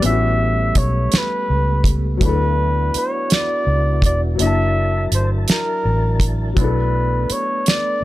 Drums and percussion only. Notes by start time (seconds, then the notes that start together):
0.03 closed hi-hat
0.75 kick, closed hi-hat
1.12 snare, closed hi-hat
1.84 kick, closed hi-hat
2.21 kick, closed hi-hat
2.94 closed hi-hat
3.30 snare, closed hi-hat
4.02 kick, closed hi-hat
4.39 closed hi-hat
5.12 closed hi-hat
5.48 snare, closed hi-hat
6.20 kick, closed hi-hat
6.57 kick, closed hi-hat
7.30 closed hi-hat
7.66 snare, closed hi-hat